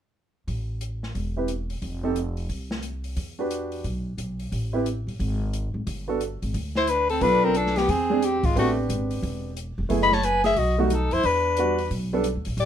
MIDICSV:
0, 0, Header, 1, 6, 480
1, 0, Start_track
1, 0, Tempo, 336134
1, 690, Time_signature, 4, 2, 24, 8
1, 18067, End_track
2, 0, Start_track
2, 0, Title_t, "Soprano saxophone"
2, 0, Program_c, 0, 64
2, 9671, Note_on_c, 0, 72, 77
2, 9847, Note_on_c, 0, 71, 70
2, 9868, Note_off_c, 0, 72, 0
2, 10126, Note_off_c, 0, 71, 0
2, 10135, Note_on_c, 0, 69, 75
2, 10317, Note_on_c, 0, 71, 78
2, 10338, Note_off_c, 0, 69, 0
2, 10622, Note_on_c, 0, 70, 85
2, 10644, Note_off_c, 0, 71, 0
2, 10803, Note_on_c, 0, 69, 75
2, 10825, Note_off_c, 0, 70, 0
2, 11095, Note_on_c, 0, 67, 84
2, 11117, Note_off_c, 0, 69, 0
2, 11286, Note_on_c, 0, 68, 78
2, 11308, Note_off_c, 0, 67, 0
2, 11774, Note_on_c, 0, 67, 75
2, 11796, Note_off_c, 0, 68, 0
2, 12067, Note_on_c, 0, 65, 75
2, 12088, Note_off_c, 0, 67, 0
2, 12233, Note_off_c, 0, 65, 0
2, 12266, Note_on_c, 0, 66, 74
2, 12436, Note_off_c, 0, 66, 0
2, 14323, Note_on_c, 0, 83, 73
2, 14478, Note_on_c, 0, 81, 75
2, 14499, Note_off_c, 0, 83, 0
2, 14638, Note_on_c, 0, 80, 81
2, 14659, Note_off_c, 0, 81, 0
2, 14928, Note_off_c, 0, 80, 0
2, 14937, Note_on_c, 0, 76, 83
2, 15119, Note_on_c, 0, 75, 71
2, 15141, Note_off_c, 0, 76, 0
2, 15412, Note_off_c, 0, 75, 0
2, 15436, Note_on_c, 0, 66, 42
2, 15617, Note_on_c, 0, 69, 63
2, 15639, Note_off_c, 0, 66, 0
2, 15890, Note_on_c, 0, 72, 92
2, 15912, Note_off_c, 0, 69, 0
2, 16078, Note_on_c, 0, 71, 73
2, 16099, Note_off_c, 0, 72, 0
2, 17025, Note_off_c, 0, 71, 0
2, 17996, Note_on_c, 0, 74, 69
2, 18067, Note_off_c, 0, 74, 0
2, 18067, End_track
3, 0, Start_track
3, 0, Title_t, "Grand piano"
3, 0, Program_c, 1, 0
3, 1950, Note_on_c, 1, 60, 42
3, 1953, Note_on_c, 1, 64, 41
3, 1959, Note_on_c, 1, 67, 41
3, 1971, Note_on_c, 1, 71, 49
3, 2113, Note_off_c, 1, 60, 0
3, 2115, Note_off_c, 1, 64, 0
3, 2117, Note_off_c, 1, 67, 0
3, 2124, Note_off_c, 1, 71, 0
3, 2903, Note_on_c, 1, 60, 53
3, 2909, Note_on_c, 1, 63, 49
3, 2909, Note_on_c, 1, 67, 49
3, 2923, Note_on_c, 1, 69, 66
3, 3071, Note_off_c, 1, 60, 0
3, 3074, Note_off_c, 1, 63, 0
3, 3074, Note_off_c, 1, 67, 0
3, 3081, Note_off_c, 1, 69, 0
3, 4837, Note_on_c, 1, 62, 53
3, 4845, Note_on_c, 1, 66, 43
3, 4852, Note_on_c, 1, 67, 46
3, 4862, Note_on_c, 1, 71, 56
3, 5465, Note_off_c, 1, 62, 0
3, 5469, Note_off_c, 1, 66, 0
3, 5472, Note_off_c, 1, 67, 0
3, 5477, Note_off_c, 1, 71, 0
3, 6754, Note_on_c, 1, 60, 54
3, 6758, Note_on_c, 1, 64, 56
3, 6772, Note_on_c, 1, 67, 53
3, 6779, Note_on_c, 1, 71, 61
3, 6921, Note_off_c, 1, 60, 0
3, 6923, Note_off_c, 1, 64, 0
3, 6930, Note_off_c, 1, 67, 0
3, 6934, Note_off_c, 1, 71, 0
3, 8679, Note_on_c, 1, 59, 51
3, 8689, Note_on_c, 1, 66, 45
3, 8690, Note_on_c, 1, 62, 44
3, 8703, Note_on_c, 1, 69, 62
3, 8844, Note_off_c, 1, 59, 0
3, 8849, Note_off_c, 1, 62, 0
3, 8849, Note_off_c, 1, 66, 0
3, 8856, Note_off_c, 1, 69, 0
3, 10293, Note_on_c, 1, 59, 56
3, 10302, Note_on_c, 1, 62, 55
3, 10319, Note_on_c, 1, 65, 53
3, 10324, Note_on_c, 1, 69, 64
3, 11023, Note_off_c, 1, 59, 0
3, 11027, Note_off_c, 1, 62, 0
3, 11036, Note_off_c, 1, 65, 0
3, 11039, Note_off_c, 1, 69, 0
3, 11564, Note_on_c, 1, 56, 57
3, 11573, Note_on_c, 1, 60, 58
3, 11579, Note_on_c, 1, 62, 55
3, 11588, Note_on_c, 1, 68, 65
3, 11725, Note_off_c, 1, 56, 0
3, 11729, Note_off_c, 1, 60, 0
3, 11732, Note_off_c, 1, 62, 0
3, 11736, Note_off_c, 1, 68, 0
3, 12221, Note_on_c, 1, 59, 59
3, 12226, Note_on_c, 1, 60, 57
3, 12235, Note_on_c, 1, 62, 57
3, 12242, Note_on_c, 1, 67, 64
3, 13555, Note_off_c, 1, 59, 0
3, 13557, Note_off_c, 1, 60, 0
3, 13562, Note_off_c, 1, 62, 0
3, 13565, Note_off_c, 1, 67, 0
3, 14121, Note_on_c, 1, 57, 59
3, 14133, Note_on_c, 1, 59, 51
3, 14143, Note_on_c, 1, 64, 54
3, 14150, Note_on_c, 1, 68, 60
3, 14404, Note_off_c, 1, 57, 0
3, 14410, Note_off_c, 1, 59, 0
3, 14415, Note_off_c, 1, 64, 0
3, 14419, Note_off_c, 1, 68, 0
3, 15399, Note_on_c, 1, 55, 57
3, 15403, Note_on_c, 1, 57, 58
3, 15412, Note_on_c, 1, 63, 54
3, 15419, Note_on_c, 1, 66, 68
3, 15558, Note_off_c, 1, 55, 0
3, 15560, Note_off_c, 1, 57, 0
3, 15564, Note_off_c, 1, 63, 0
3, 15568, Note_off_c, 1, 66, 0
3, 16537, Note_on_c, 1, 55, 54
3, 16542, Note_on_c, 1, 59, 50
3, 16549, Note_on_c, 1, 62, 47
3, 16559, Note_on_c, 1, 66, 64
3, 16809, Note_off_c, 1, 55, 0
3, 16812, Note_off_c, 1, 59, 0
3, 16815, Note_off_c, 1, 62, 0
3, 16820, Note_off_c, 1, 66, 0
3, 17322, Note_on_c, 1, 55, 62
3, 17328, Note_on_c, 1, 59, 62
3, 17335, Note_on_c, 1, 62, 60
3, 17345, Note_on_c, 1, 69, 71
3, 17477, Note_off_c, 1, 55, 0
3, 17480, Note_off_c, 1, 59, 0
3, 17484, Note_off_c, 1, 62, 0
3, 17489, Note_off_c, 1, 69, 0
3, 18067, End_track
4, 0, Start_track
4, 0, Title_t, "Alto saxophone"
4, 0, Program_c, 2, 65
4, 9676, Note_on_c, 2, 64, 67
4, 9860, Note_on_c, 2, 62, 57
4, 9882, Note_off_c, 2, 64, 0
4, 10142, Note_off_c, 2, 62, 0
4, 10150, Note_on_c, 2, 60, 65
4, 10324, Note_on_c, 2, 62, 73
4, 10345, Note_off_c, 2, 60, 0
4, 10635, Note_on_c, 2, 60, 65
4, 10657, Note_off_c, 2, 62, 0
4, 10819, Note_on_c, 2, 62, 66
4, 10841, Note_off_c, 2, 60, 0
4, 11126, Note_on_c, 2, 59, 65
4, 11148, Note_off_c, 2, 62, 0
4, 11291, Note_on_c, 2, 60, 65
4, 11312, Note_off_c, 2, 59, 0
4, 11756, Note_off_c, 2, 60, 0
4, 11756, Note_on_c, 2, 60, 57
4, 12068, Note_on_c, 2, 56, 61
4, 12090, Note_off_c, 2, 60, 0
4, 12234, Note_off_c, 2, 56, 0
4, 12258, Note_on_c, 2, 57, 59
4, 12525, Note_off_c, 2, 57, 0
4, 14319, Note_on_c, 2, 75, 69
4, 14465, Note_on_c, 2, 73, 62
4, 14487, Note_off_c, 2, 75, 0
4, 14630, Note_on_c, 2, 71, 67
4, 14651, Note_off_c, 2, 73, 0
4, 14904, Note_off_c, 2, 71, 0
4, 14913, Note_on_c, 2, 68, 71
4, 15095, Note_on_c, 2, 66, 61
4, 15116, Note_off_c, 2, 68, 0
4, 15395, Note_off_c, 2, 66, 0
4, 15404, Note_on_c, 2, 57, 33
4, 15595, Note_on_c, 2, 63, 50
4, 15617, Note_off_c, 2, 57, 0
4, 15883, Note_on_c, 2, 64, 77
4, 15904, Note_off_c, 2, 63, 0
4, 16059, Note_on_c, 2, 62, 58
4, 16081, Note_off_c, 2, 64, 0
4, 17015, Note_off_c, 2, 62, 0
4, 17983, Note_on_c, 2, 67, 55
4, 18067, Note_off_c, 2, 67, 0
4, 18067, End_track
5, 0, Start_track
5, 0, Title_t, "Upright bass"
5, 0, Program_c, 3, 32
5, 679, Note_on_c, 3, 33, 67
5, 1599, Note_off_c, 3, 33, 0
5, 1638, Note_on_c, 3, 28, 67
5, 2561, Note_off_c, 3, 28, 0
5, 2595, Note_on_c, 3, 29, 62
5, 3520, Note_off_c, 3, 29, 0
5, 3558, Note_on_c, 3, 36, 65
5, 4483, Note_off_c, 3, 36, 0
5, 4519, Note_on_c, 3, 40, 66
5, 5445, Note_off_c, 3, 40, 0
5, 5491, Note_on_c, 3, 35, 67
5, 5945, Note_off_c, 3, 35, 0
5, 5963, Note_on_c, 3, 35, 64
5, 6421, Note_off_c, 3, 35, 0
5, 6452, Note_on_c, 3, 33, 68
5, 7190, Note_off_c, 3, 33, 0
5, 7237, Note_on_c, 3, 31, 57
5, 7408, Note_off_c, 3, 31, 0
5, 7417, Note_on_c, 3, 32, 71
5, 8152, Note_off_c, 3, 32, 0
5, 8197, Note_on_c, 3, 32, 61
5, 8368, Note_off_c, 3, 32, 0
5, 8377, Note_on_c, 3, 31, 67
5, 9112, Note_off_c, 3, 31, 0
5, 9174, Note_on_c, 3, 32, 59
5, 9329, Note_off_c, 3, 32, 0
5, 9338, Note_on_c, 3, 38, 74
5, 10254, Note_off_c, 3, 38, 0
5, 10295, Note_on_c, 3, 35, 73
5, 11212, Note_off_c, 3, 35, 0
5, 11255, Note_on_c, 3, 40, 75
5, 11988, Note_off_c, 3, 40, 0
5, 12039, Note_on_c, 3, 32, 69
5, 12207, Note_off_c, 3, 32, 0
5, 12219, Note_on_c, 3, 33, 76
5, 12667, Note_off_c, 3, 33, 0
5, 12695, Note_on_c, 3, 32, 70
5, 13145, Note_off_c, 3, 32, 0
5, 13173, Note_on_c, 3, 28, 72
5, 13905, Note_off_c, 3, 28, 0
5, 13963, Note_on_c, 3, 28, 67
5, 14122, Note_off_c, 3, 28, 0
5, 14131, Note_on_c, 3, 30, 68
5, 15045, Note_off_c, 3, 30, 0
5, 15080, Note_on_c, 3, 35, 69
5, 15817, Note_off_c, 3, 35, 0
5, 15870, Note_on_c, 3, 41, 68
5, 16034, Note_off_c, 3, 41, 0
5, 16042, Note_on_c, 3, 40, 74
5, 16959, Note_off_c, 3, 40, 0
5, 17003, Note_on_c, 3, 35, 73
5, 17602, Note_off_c, 3, 35, 0
5, 17639, Note_on_c, 3, 38, 54
5, 17794, Note_off_c, 3, 38, 0
5, 17802, Note_on_c, 3, 34, 64
5, 17941, Note_off_c, 3, 34, 0
5, 17949, Note_on_c, 3, 33, 74
5, 18067, Note_off_c, 3, 33, 0
5, 18067, End_track
6, 0, Start_track
6, 0, Title_t, "Drums"
6, 681, Note_on_c, 9, 36, 27
6, 682, Note_on_c, 9, 46, 31
6, 824, Note_off_c, 9, 36, 0
6, 825, Note_off_c, 9, 46, 0
6, 1155, Note_on_c, 9, 42, 38
6, 1297, Note_off_c, 9, 42, 0
6, 1473, Note_on_c, 9, 38, 26
6, 1616, Note_off_c, 9, 38, 0
6, 1642, Note_on_c, 9, 36, 26
6, 1643, Note_on_c, 9, 46, 30
6, 1785, Note_off_c, 9, 36, 0
6, 1786, Note_off_c, 9, 46, 0
6, 2113, Note_on_c, 9, 42, 35
6, 2256, Note_off_c, 9, 42, 0
6, 2425, Note_on_c, 9, 46, 31
6, 2568, Note_off_c, 9, 46, 0
6, 2597, Note_on_c, 9, 46, 34
6, 2602, Note_on_c, 9, 36, 29
6, 2740, Note_off_c, 9, 46, 0
6, 2744, Note_off_c, 9, 36, 0
6, 3080, Note_on_c, 9, 42, 39
6, 3223, Note_off_c, 9, 42, 0
6, 3382, Note_on_c, 9, 46, 26
6, 3525, Note_off_c, 9, 46, 0
6, 3561, Note_on_c, 9, 46, 33
6, 3563, Note_on_c, 9, 36, 26
6, 3704, Note_off_c, 9, 46, 0
6, 3706, Note_off_c, 9, 36, 0
6, 3868, Note_on_c, 9, 38, 44
6, 4011, Note_off_c, 9, 38, 0
6, 4033, Note_on_c, 9, 42, 37
6, 4175, Note_off_c, 9, 42, 0
6, 4340, Note_on_c, 9, 46, 32
6, 4482, Note_off_c, 9, 46, 0
6, 4519, Note_on_c, 9, 46, 36
6, 4524, Note_on_c, 9, 36, 28
6, 4662, Note_off_c, 9, 46, 0
6, 4666, Note_off_c, 9, 36, 0
6, 5006, Note_on_c, 9, 42, 41
6, 5149, Note_off_c, 9, 42, 0
6, 5308, Note_on_c, 9, 46, 28
6, 5451, Note_off_c, 9, 46, 0
6, 5486, Note_on_c, 9, 46, 33
6, 5491, Note_on_c, 9, 36, 26
6, 5628, Note_off_c, 9, 46, 0
6, 5634, Note_off_c, 9, 36, 0
6, 5971, Note_on_c, 9, 42, 40
6, 6114, Note_off_c, 9, 42, 0
6, 6275, Note_on_c, 9, 46, 31
6, 6418, Note_off_c, 9, 46, 0
6, 6458, Note_on_c, 9, 46, 39
6, 6459, Note_on_c, 9, 36, 28
6, 6600, Note_off_c, 9, 46, 0
6, 6601, Note_off_c, 9, 36, 0
6, 6939, Note_on_c, 9, 42, 40
6, 7082, Note_off_c, 9, 42, 0
6, 7259, Note_on_c, 9, 46, 28
6, 7402, Note_off_c, 9, 46, 0
6, 7423, Note_on_c, 9, 36, 29
6, 7426, Note_on_c, 9, 46, 33
6, 7566, Note_off_c, 9, 36, 0
6, 7569, Note_off_c, 9, 46, 0
6, 7902, Note_on_c, 9, 42, 40
6, 8045, Note_off_c, 9, 42, 0
6, 8380, Note_on_c, 9, 46, 41
6, 8384, Note_on_c, 9, 36, 31
6, 8523, Note_off_c, 9, 46, 0
6, 8527, Note_off_c, 9, 36, 0
6, 8862, Note_on_c, 9, 42, 46
6, 9005, Note_off_c, 9, 42, 0
6, 9173, Note_on_c, 9, 46, 30
6, 9316, Note_off_c, 9, 46, 0
6, 9343, Note_on_c, 9, 46, 38
6, 9344, Note_on_c, 9, 36, 28
6, 9486, Note_off_c, 9, 46, 0
6, 9487, Note_off_c, 9, 36, 0
6, 9645, Note_on_c, 9, 38, 38
6, 9788, Note_off_c, 9, 38, 0
6, 9814, Note_on_c, 9, 42, 45
6, 9957, Note_off_c, 9, 42, 0
6, 10130, Note_on_c, 9, 46, 34
6, 10273, Note_off_c, 9, 46, 0
6, 10297, Note_on_c, 9, 46, 40
6, 10302, Note_on_c, 9, 36, 30
6, 10440, Note_off_c, 9, 46, 0
6, 10445, Note_off_c, 9, 36, 0
6, 10773, Note_on_c, 9, 42, 44
6, 10916, Note_off_c, 9, 42, 0
6, 10945, Note_on_c, 9, 38, 28
6, 11079, Note_on_c, 9, 46, 33
6, 11087, Note_off_c, 9, 38, 0
6, 11099, Note_on_c, 9, 38, 38
6, 11222, Note_off_c, 9, 46, 0
6, 11241, Note_off_c, 9, 38, 0
6, 11262, Note_on_c, 9, 46, 38
6, 11263, Note_on_c, 9, 36, 31
6, 11405, Note_off_c, 9, 46, 0
6, 11406, Note_off_c, 9, 36, 0
6, 11743, Note_on_c, 9, 42, 43
6, 11885, Note_off_c, 9, 42, 0
6, 12044, Note_on_c, 9, 46, 35
6, 12047, Note_on_c, 9, 36, 52
6, 12187, Note_off_c, 9, 46, 0
6, 12190, Note_off_c, 9, 36, 0
6, 12223, Note_on_c, 9, 36, 30
6, 12233, Note_on_c, 9, 46, 40
6, 12366, Note_off_c, 9, 36, 0
6, 12375, Note_off_c, 9, 46, 0
6, 12704, Note_on_c, 9, 42, 47
6, 12847, Note_off_c, 9, 42, 0
6, 13002, Note_on_c, 9, 46, 31
6, 13145, Note_off_c, 9, 46, 0
6, 13178, Note_on_c, 9, 36, 31
6, 13184, Note_on_c, 9, 46, 39
6, 13321, Note_off_c, 9, 36, 0
6, 13327, Note_off_c, 9, 46, 0
6, 13660, Note_on_c, 9, 42, 45
6, 13803, Note_off_c, 9, 42, 0
6, 14134, Note_on_c, 9, 46, 44
6, 14135, Note_on_c, 9, 36, 31
6, 14277, Note_off_c, 9, 46, 0
6, 14278, Note_off_c, 9, 36, 0
6, 14302, Note_on_c, 9, 38, 28
6, 14445, Note_off_c, 9, 38, 0
6, 14455, Note_on_c, 9, 38, 37
6, 14598, Note_off_c, 9, 38, 0
6, 14612, Note_on_c, 9, 42, 46
6, 14755, Note_off_c, 9, 42, 0
6, 14906, Note_on_c, 9, 46, 33
6, 14909, Note_on_c, 9, 38, 41
6, 15049, Note_off_c, 9, 46, 0
6, 15052, Note_off_c, 9, 38, 0
6, 15084, Note_on_c, 9, 46, 41
6, 15088, Note_on_c, 9, 36, 29
6, 15227, Note_off_c, 9, 46, 0
6, 15230, Note_off_c, 9, 36, 0
6, 15566, Note_on_c, 9, 42, 44
6, 15709, Note_off_c, 9, 42, 0
6, 15866, Note_on_c, 9, 46, 36
6, 16009, Note_off_c, 9, 46, 0
6, 16040, Note_on_c, 9, 46, 41
6, 16047, Note_on_c, 9, 36, 29
6, 16183, Note_off_c, 9, 46, 0
6, 16190, Note_off_c, 9, 36, 0
6, 16516, Note_on_c, 9, 42, 45
6, 16658, Note_off_c, 9, 42, 0
6, 16827, Note_on_c, 9, 46, 32
6, 16970, Note_off_c, 9, 46, 0
6, 17004, Note_on_c, 9, 46, 39
6, 17006, Note_on_c, 9, 36, 27
6, 17147, Note_off_c, 9, 46, 0
6, 17148, Note_off_c, 9, 36, 0
6, 17476, Note_on_c, 9, 42, 47
6, 17618, Note_off_c, 9, 42, 0
6, 17777, Note_on_c, 9, 46, 38
6, 17920, Note_off_c, 9, 46, 0
6, 17956, Note_on_c, 9, 46, 42
6, 17958, Note_on_c, 9, 36, 32
6, 18067, Note_off_c, 9, 36, 0
6, 18067, Note_off_c, 9, 46, 0
6, 18067, End_track
0, 0, End_of_file